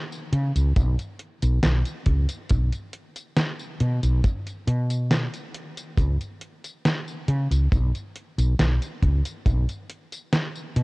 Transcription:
0.12 tambourine soft
0.32 0.51 C#3 loud
0.32 closed hi-hat medium
0.55 0.72 C#2 medium
0.55 closed hi-hat medium
0.55 tambourine medium
0.76 0.95 B1 medium
0.76 kick loud
0.76 closed hi-hat medium
0.76 tambourine soft
0.99 closed hi-hat soft
0.99 tambourine soft
1.19 closed hi-hat medium
1.42 1.59 B1 medium
1.42 closed hi-hat medium
1.42 tambourine medium
1.63 1.82 B1 medium
1.63 snare loud
1.63 closed hi-hat medium
1.63 tambourine soft
1.86 closed hi-hat soft
1.86 tambourine soft
2.06 2.25 C#2 medium
2.06 kick medium
2.06 closed hi-hat medium
2.29 closed hi-hat medium
2.29 tambourine medium
2.50 2.69 B1 medium
2.50 kick loud
2.50 closed hi-hat medium
2.50 tambourine soft
2.73 closed hi-hat soft
2.73 tambourine soft
2.93 closed hi-hat medium
3.16 closed hi-hat soft
3.16 tambourine soft
3.37 snare loud
3.37 closed hi-hat medium
3.37 tambourine soft
3.59 tambourine soft
3.80 3.99 B2 loud
3.80 closed hi-hat medium
4.03 4.20 B1 medium
4.03 closed hi-hat soft
4.03 tambourine medium
4.24 kick loud
4.24 closed hi-hat medium
4.24 tambourine soft
4.47 closed hi-hat soft
4.47 tambourine soft
4.67 5.27 B2 loud
4.67 closed hi-hat medium
4.90 closed hi-hat soft
4.90 tambourine medium
5.11 snare loud
5.11 closed hi-hat medium
5.11 tambourine soft
5.34 closed hi-hat soft
5.34 tambourine soft
5.54 closed hi-hat medium
5.77 closed hi-hat medium
5.77 tambourine medium
5.98 6.16 C#2 loud
5.98 kick loud
5.98 closed hi-hat medium
5.98 tambourine soft
6.21 closed hi-hat soft
6.21 tambourine soft
6.41 closed hi-hat medium
6.64 closed hi-hat soft
6.64 tambourine soft
6.85 snare loud
6.85 closed hi-hat medium
6.85 tambourine soft
7.08 tambourine soft
7.28 7.47 C#3 loud
7.28 closed hi-hat medium
7.51 7.68 C#2 medium
7.51 closed hi-hat medium
7.51 tambourine soft
7.72 7.90 B1 medium
7.72 kick loud
7.72 closed hi-hat medium
7.72 tambourine soft
7.95 closed hi-hat soft
7.95 tambourine soft
8.16 closed hi-hat medium
8.38 8.55 B1 medium
8.38 closed hi-hat soft
8.38 tambourine medium
8.59 8.77 B1 medium
8.59 snare loud
8.59 closed hi-hat medium
8.59 tambourine soft
8.82 closed hi-hat soft
8.82 tambourine soft
9.02 9.21 C#2 medium
9.02 kick medium
9.02 closed hi-hat medium
9.25 closed hi-hat medium
9.25 tambourine medium
9.46 9.64 B1 medium
9.46 kick loud
9.46 closed hi-hat medium
9.46 tambourine soft
9.69 closed hi-hat soft
9.69 tambourine soft
9.90 closed hi-hat medium
10.12 closed hi-hat soft
10.12 tambourine medium
10.33 snare loud
10.33 closed hi-hat medium
10.33 tambourine soft
10.56 tambourine soft
10.76 10.83 B2 loud
10.76 closed hi-hat medium

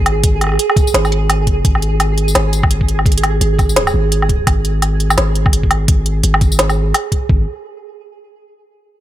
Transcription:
0.00 0.58 G#1 medium
0.00 7.30 G#4 medium
0.06 closed hi-hat soft
0.06 low woodblock medium
0.24 kick loud
0.24 closed hi-hat medium
0.41 closed hi-hat soft
0.41 low woodblock soft
0.44 low woodblock soft
0.47 low woodblock soft
0.49 low woodblock soft
0.52 low woodblock soft
0.54 low woodblock soft
0.57 closed hi-hat medium
0.57 low woodblock soft
0.70 low woodblock medium
0.76 kick loud
0.76 closed hi-hat soft
0.76 tambourine soft
0.87 tambourine medium
0.94 1.43 G#1 loud
0.94 snare loud
0.94 closed hi-hat medium
1.05 tambourine soft
1.05 low woodblock soft
1.12 closed hi-hat soft
1.30 closed hi-hat medium
1.30 low woodblock medium
1.43 1.63 G1 loud
1.43 closed hi-hat soft
1.47 kick medium
1.65 2.34 G#1 loud
1.65 kick loud
1.65 closed hi-hat medium
1.75 low woodblock medium
1.82 closed hi-hat soft
2.00 closed hi-hat medium
2.00 low woodblock medium
2.18 closed hi-hat soft
2.28 tambourine medium
2.35 3.40 G#1 loud
2.35 snare loud
2.35 closed hi-hat medium
2.35 low woodblock medium
2.53 closed hi-hat soft
2.53 tambourine medium
2.63 kick loud
2.63 low woodblock medium
2.71 closed hi-hat medium
2.81 kick medium
2.88 closed hi-hat soft
2.99 low woodblock medium
3.06 kick loud
3.06 closed hi-hat soft
3.12 closed hi-hat soft
3.18 closed hi-hat medium
3.24 closed hi-hat soft
3.24 low woodblock medium
3.41 3.93 G#1 loud
3.41 closed hi-hat medium
3.59 kick loud
3.59 closed hi-hat soft
3.59 tambourine soft
3.59 low woodblock medium
3.69 tambourine medium
3.76 snare loud
3.76 closed hi-hat medium
3.87 tambourine soft
3.87 low woodblock medium
3.94 4.46 G#1 loud
4.12 closed hi-hat medium
4.22 low woodblock medium
4.29 kick medium
4.29 closed hi-hat soft
4.47 5.16 G#1 medium
4.47 kick loud
4.47 closed hi-hat medium
4.47 low woodblock medium
4.65 closed hi-hat soft
4.82 closed hi-hat medium
4.82 low woodblock medium
5.00 closed hi-hat soft
5.10 tambourine medium
5.10 low woodblock medium
5.18 6.22 G#1 loud
5.18 snare loud
5.18 closed hi-hat medium
5.35 closed hi-hat soft
5.46 kick loud
5.46 low woodblock medium
5.53 closed hi-hat medium
5.63 kick medium
5.71 closed hi-hat soft
5.71 low woodblock medium
5.88 kick loud
5.88 closed hi-hat medium
6.06 closed hi-hat soft
6.23 6.93 G#1 medium
6.23 closed hi-hat medium
6.34 low woodblock medium
6.41 kick loud
6.41 closed hi-hat soft
6.41 tambourine soft
6.52 tambourine medium
6.59 snare loud
6.59 closed hi-hat medium
6.70 tambourine soft
6.70 low woodblock medium
6.94 closed hi-hat medium
6.94 low woodblock medium
7.12 kick medium
7.12 closed hi-hat soft
7.29 7.46 G#1 medium
7.29 kick loud

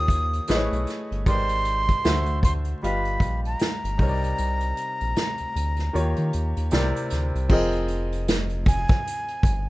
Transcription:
0.00 0.40 D#2 loud
0.00 0.48 D#3 medium
0.00 0.49 A#3 medium
0.00 0.49 F4 medium
0.00 0.49 G4 soft
0.00 0.53 C#5 medium
0.00 0.88 D#6 loud
0.08 kick medium
0.08 closed hi-hat medium
0.33 closed hi-hat soft
0.47 0.69 A1 loud
0.47 1.26 A3 medium
0.47 1.26 E4 medium
0.47 1.27 G#4 medium
0.47 1.26 B4 medium
0.47 0.57 C5 medium
0.47 1.27 D#5 medium
0.47 snare loud
0.47 closed hi-hat medium
0.57 1.30 C#5 medium
0.72 0.86 B1 medium
0.72 closed hi-hat medium
0.87 snare soft
0.87 closed hi-hat medium
1.11 1.25 G1 medium
1.11 closed hi-hat soft
1.26 1.96 G#1 loud
1.26 2.04 G#3 medium
1.26 2.04 D#4 medium
1.26 2.04 G4 medium
1.26 2.05 A#4 medium
1.26 1.35 B4 soft
1.26 2.05 D5 medium
1.26 2.40 C6 loud
1.26 kick loud
1.26 closed hi-hat medium
1.34 2.04 C5 medium
1.49 closed hi-hat soft
1.65 closed hi-hat medium
1.89 kick medium
1.89 closed hi-hat soft
2.04 2.74 D2 medium
2.04 2.82 D3 medium
2.04 2.82 A3 medium
2.04 2.83 F#4 medium
2.04 2.83 C5 medium
2.04 2.83 E5 medium
2.04 snare loud
2.04 closed hi-hat medium
2.26 closed hi-hat soft
2.43 2.53 C6 loud
2.43 kick medium
2.43 closed hi-hat medium
2.65 closed hi-hat soft
2.83 3.18 G1 loud
2.83 3.97 G3 medium
2.83 4.00 F4 medium
2.83 3.99 G4 medium
2.83 4.00 B4 soft
2.83 4.00 D#5 medium
2.83 4.00 F5 medium
2.83 3.41 B5 loud
2.83 closed hi-hat medium
3.05 closed hi-hat soft
3.20 3.56 A#1 medium
3.20 kick medium
3.20 closed hi-hat medium
3.45 6.68 A#5 medium
3.45 closed hi-hat medium
3.59 snare loud
3.59 closed hi-hat medium
3.84 3.98 G1 medium
3.84 closed hi-hat medium
3.98 4.34 C2 medium
3.98 5.89 C3 medium
3.98 5.90 G3 medium
3.98 5.90 D#4 medium
3.98 5.91 A#4 medium
3.98 kick loud
3.98 open hi-hat soft
4.02 4.08 C#5 medium
4.09 5.95 D5 medium
4.24 closed hi-hat soft
4.38 4.73 C2 loud
4.38 closed hi-hat medium
4.61 closed hi-hat soft
4.77 closed hi-hat medium
5.01 5.15 A#1 medium
5.01 closed hi-hat soft
5.16 snare loud
5.16 closed hi-hat medium
5.38 5.46 D2 soft
5.38 closed hi-hat soft
5.56 5.90 D2 loud
5.56 closed hi-hat medium
5.76 snare soft
5.76 closed hi-hat soft
5.93 6.15 D#2 loud
5.93 6.71 D#3 medium
5.93 6.72 A#3 medium
5.93 6.72 F4 medium
5.93 6.72 G4 medium
5.93 6.72 C#5 medium
5.93 closed hi-hat medium
6.16 6.32 D#3 loud
6.16 closed hi-hat soft
6.33 6.54 D#2 medium
6.33 closed hi-hat medium
6.57 6.71 D#2 medium
6.57 closed hi-hat medium
6.71 6.93 C2 loud
6.71 7.50 C3 medium
6.71 7.48 C4 medium
6.71 7.50 E4 medium
6.71 7.50 A#4 medium
6.71 7.51 D5 medium
6.71 snare loud
6.71 closed hi-hat medium
6.96 closed hi-hat medium
7.10 7.32 D2 medium
7.10 snare soft
7.10 closed hi-hat medium
7.35 7.49 C2 medium
7.35 closed hi-hat soft
7.49 8.86 F1 loud
7.49 9.69 F3 medium
7.49 9.69 C4 medium
7.49 9.69 F4 medium
7.49 9.69 G#4 medium
7.49 9.69 A#4 medium
7.49 9.69 D#5 medium
7.49 kick loud
7.49 crash loud
7.72 closed hi-hat soft
7.88 closed hi-hat medium
8.13 closed hi-hat soft
8.28 snare loud
8.28 closed hi-hat medium
8.49 closed hi-hat soft
8.66 9.69 G#5 loud
8.66 kick loud
8.66 closed hi-hat medium
8.88 kick loud
8.88 snare soft
8.88 closed hi-hat soft
9.07 closed hi-hat medium
9.28 closed hi-hat soft
9.43 9.69 G1 loud
9.43 kick medium
9.43 closed hi-hat medium

